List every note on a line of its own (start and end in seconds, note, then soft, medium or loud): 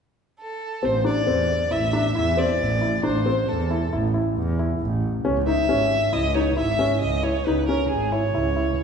0.40 0.86 A4 medium
0.83 1.17 A1 medium
0.83 0.94 C4 medium
0.83 1.05 C5 medium
1.05 1.16 D4 medium
1.05 1.73 D5 medium
1.27 1.61 E2 medium
1.27 1.50 C4 medium
1.71 2.05 A1 medium
1.71 1.82 E4 medium
1.71 2.15 E5 medium
1.93 2.05 D4 medium
2.15 2.50 E2 medium
2.15 2.27 E4 medium
2.15 2.40 E5 medium
2.37 2.60 C4 medium
2.37 3.04 D5 medium
2.60 2.94 A1 medium
2.81 2.93 E4 medium
3.03 3.38 A1 medium
3.03 3.15 D4 medium
3.03 3.50 C5 medium
3.26 3.48 C4 medium
3.49 3.82 E2 medium
3.49 3.93 A4 medium
3.71 3.82 E4 medium
3.92 4.26 A1 medium
3.92 4.04 E4 medium
4.14 4.37 E4 medium
4.36 4.70 E2 medium
4.59 4.82 E4 medium
4.80 5.14 A1 medium
5.25 5.59 C#2 medium
5.25 5.36 C#4 medium
5.47 5.58 D#4 medium
5.47 6.14 E5 medium
5.69 6.03 G#1 medium
5.69 5.92 C#4 medium
6.13 6.47 C#2 medium
6.13 6.24 E4 medium
6.13 6.36 D#5 medium
6.35 6.47 D#4 medium
6.35 6.57 C#5 medium
6.56 6.91 G#1 medium
6.56 6.68 E4 medium
6.56 6.99 E5 medium
6.79 7.02 C#4 medium
7.01 7.36 C#2 medium
7.01 7.25 D#5 medium
7.23 7.34 E4 medium
7.23 7.47 C#5 medium
7.46 7.80 C#2 medium
7.46 7.58 D#4 medium
7.46 7.67 B4 medium
7.67 7.91 C#4 medium
7.67 7.88 A#4 medium
7.89 8.24 G#1 medium
7.89 8.13 G#4 medium
8.12 8.23 E4 medium
8.12 8.83 C#5 medium
8.34 8.68 C#2 medium
8.34 8.46 E4 medium
8.56 8.79 E4 medium
8.78 8.83 G#1 medium